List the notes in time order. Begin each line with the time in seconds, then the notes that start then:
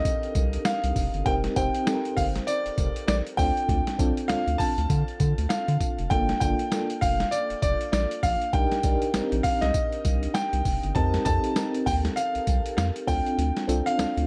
Already playing: C4 D4 D#4 G4 A4 A#4 D#5
0.05 kick, closed hi-hat, tambourine
0.23 closed hi-hat
0.35 C2, kick, closed hi-hat, tambourine
0.53 closed hi-hat
0.65 F5, snare, closed hi-hat, tambourine
0.84 C2, closed hi-hat
0.96 F1, kick, open hi-hat, tambourine
1.14 G1, closed hi-hat
1.26 F1 C4 D#4 G4 A#4 G5, kick, closed hi-hat
1.44 snare, closed hi-hat
1.56 F1 C4 D#4 G4 C5 G5, kick, closed hi-hat, tambourine
1.75 closed hi-hat
1.86 C4 D#4 G4 A4, snare, closed hi-hat, tambourine
1.94 A#4
2.05 closed hi-hat
2.17 G1 F5, kick, open hi-hat, tambourine
2.36 snare, closed hi-hat
2.47 D5, closed hi-hat, tambourine
2.66 F1, closed hi-hat
2.78 F1, kick, closed hi-hat, tambourine
2.96 closed hi-hat
3.08 A#1 D5, snare, closed hi-hat, tambourine
3.27 closed hi-hat
3.37 D2 C4 D4 F4 A4 G5, kick, open hi-hat, tambourine
3.57 closed hi-hat
3.69 D2, kick, closed hi-hat
3.87 snare, closed hi-hat
3.99 C2 C4 D4 F4 A4, kick, closed hi-hat, tambourine
4.17 closed hi-hat
4.28 D2 C4 D4 F4 A4 F5, snare, closed hi-hat, tambourine
4.47 D2, closed hi-hat
4.58 A5, kick, open hi-hat, tambourine
4.78 D2, closed hi-hat
4.90 D3, kick, closed hi-hat, tambourine
5.08 closed hi-hat
5.20 D3, kick, closed hi-hat, tambourine
5.38 D2, closed hi-hat
5.49 F5, snare, closed hi-hat, tambourine
5.68 D3, closed hi-hat
5.81 kick, closed hi-hat, tambourine
5.99 F1, closed hi-hat
6.10 G1 A#3 D4 F4 A4 G5, kick, closed hi-hat
6.29 snare, closed hi-hat
6.40 G1 A#3 D4 F4 A4 G5, kick, closed hi-hat, tambourine
6.59 closed hi-hat
6.72 A#3 D4 F4 A4, snare, closed hi-hat, tambourine
6.90 closed hi-hat
7.01 F1 F5, kick, open hi-hat, tambourine
7.20 snare, closed hi-hat
7.31 D5, closed hi-hat, tambourine
7.50 F1, closed hi-hat
7.62 F1 D5, kick, closed hi-hat, tambourine
7.81 closed hi-hat
7.92 A#1 D5, snare, closed hi-hat, tambourine
8.11 closed hi-hat
8.23 A#1 F5, kick, open hi-hat, tambourine
8.42 closed hi-hat
8.53 C2 D4 D#4 G4 A#4 G5, kick, closed hi-hat
8.72 snare, closed hi-hat
8.83 C2 D4 D#4 G4 A#4, kick, closed hi-hat, tambourine
9.02 closed hi-hat
9.14 A#1 C4 D#4 G4 A#4, snare, closed hi-hat, tambourine
9.32 A#1, closed hi-hat
9.43 F5, kick, open hi-hat, tambourine
9.61 C2 D#5, snare, closed hi-hat
9.74 kick, closed hi-hat, tambourine
9.92 closed hi-hat
10.05 C2, kick, closed hi-hat, tambourine
10.23 closed hi-hat
10.34 G5, snare, closed hi-hat, tambourine
10.53 C2, closed hi-hat
10.65 F1, kick, open hi-hat, tambourine
10.83 G1, closed hi-hat
10.95 F2 C4 D#4 G4 A#4 A5, kick, closed hi-hat
11.14 snare, closed hi-hat
11.25 F2 C4 D#4 G4 A4 A5, kick, closed hi-hat, tambourine
11.44 closed hi-hat
11.56 C4 D#4 G4 A#4, snare, closed hi-hat, tambourine
11.74 closed hi-hat
11.86 D#2 G5, kick, open hi-hat, tambourine
12.05 snare, closed hi-hat
12.16 F5, closed hi-hat, tambourine
12.35 C2, closed hi-hat
12.47 C2, kick, closed hi-hat, tambourine
12.66 closed hi-hat
12.77 F2 F5, snare, closed hi-hat, tambourine
12.96 closed hi-hat
13.07 D2 C4 D4 F4 A4 G5, kick, open hi-hat, tambourine
13.26 closed hi-hat
13.38 D2, closed hi-hat
13.57 snare, closed hi-hat
13.68 C2 C4 D4 F4 A4, closed hi-hat, tambourine
13.86 F5, closed hi-hat
13.98 D2 C4 D4 F4 A4, snare, closed hi-hat, tambourine
14.17 D2, closed hi-hat